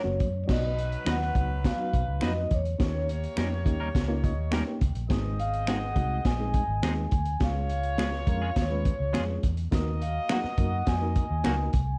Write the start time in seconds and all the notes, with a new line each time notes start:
Already playing: C#5
0.04 F#1 F#3 A#3 C#4 F#4
0.20 F#2, kick, closed hi-hat
0.44 F#3 B3 D#4 F#4 D5
0.49 B1 F#3 D#4 B4 D#5, kick, snare, crash
0.79 closed hi-hat
0.92 closed hi-hat
1.05 D#2 F#3 B3 D#4 F4 F#4 B4, finger snap, snare, closed hi-hat
1.09 F#5
1.21 snare
1.34 C#2 F#3 B3 D#4 F#4, kick, closed hi-hat
1.64 F5, kick, snare, closed hi-hat
1.77 F#3 B3 D#4 F#4
1.94 B1, kick, closed hi-hat
2.08 C#2
2.20 F2 F#3 B3 D#4 F#4 B4, finger snap, snare, closed hi-hat
2.24 D#5
2.51 E2 C#5, kick, closed hi-hat
2.65 closed hi-hat
2.78 D#2 A#3 C#4 D#4 G4 C#5, kick, snare, closed hi-hat
3.09 closed hi-hat
3.24 closed hi-hat
3.36 F2 G3 A#3 C#4 D#4 G4 A#4, finger snap, snare, closed hi-hat
3.65 D#2 A#3 C#4 D#4 G4, kick, closed hi-hat
3.80 G3 C#4 D#4 A#4
3.95 C#2, kick, snare, closed hi-hat
4.08 A#3 C#4 D#4 F4
4.24 D#5, kick, closed hi-hat
4.38 D#2
4.51 G3 A#3 C#4 D#4 G4 A#4 G5, finger snap, snare, closed hi-hat
4.81 C#2, kick, closed hi-hat
4.95 A#1, closed hi-hat
5.09 G#1 G#3 C4 D#4 G#4 D#5, kick, snare, closed hi-hat
5.39 F5, closed hi-hat
5.54 closed hi-hat
5.67 G#3 C4 D#4 G#4 F#5, finger snap, snare, closed hi-hat
5.96 C2 G#3 C4 D#4 F#4, kick, closed hi-hat
6.25 A#1 G#5, kick, snare, closed hi-hat
6.39 G#3 C4 D#4 G#4
6.54 kick, closed hi-hat
6.68 G#1
6.82 D#2 G#3 C4 D#4 G#4, finger snap, snare, closed hi-hat
7.11 D2, kick, closed hi-hat
7.25 closed hi-hat
7.40 C#2 G#3 C#4 F4 G#4 C#5 F5, kick, snare, closed hi-hat
7.69 closed hi-hat
7.83 closed hi-hat
7.98 G#3 C#4 F4 G#4, finger snap, snare, closed hi-hat
8.13 snare
8.27 F2 G#3 C#4 F4 A#4, kick, closed hi-hat
8.42 G#3 C#4 F4 G#4
8.56 D#2 C#5, kick, snare, closed hi-hat
8.70 G#3 C#4 F4 B4
8.85 kick, closed hi-hat
9.00 C#2
9.13 F2 G#3 C#4 F4 G#4, finger snap, snare, closed hi-hat
9.43 E2, kick, closed hi-hat
9.57 closed hi-hat
9.71 D#2 A#3 D#4 F#4 A#4 D#5, kick, snare, closed hi-hat
10.01 F5, closed hi-hat
10.29 F#3 A#3 D#4 F#4 G#4 F#5, finger snap, snare, closed hi-hat
10.44 muted fingered electric bass stroke, snare
10.58 F#2 A#3 D#4 F#4 A#4, kick, closed hi-hat
10.87 F2 G#5, kick, snare, closed hi-hat
11.02 A#3 D#4 F#4 A#4
11.15 kick, closed hi-hat
11.31 D#2
11.44 C#2 F#3 A#3 D#4 F#4 A#4, finger snap, snare, closed hi-hat
11.73 C2, kick, closed hi-hat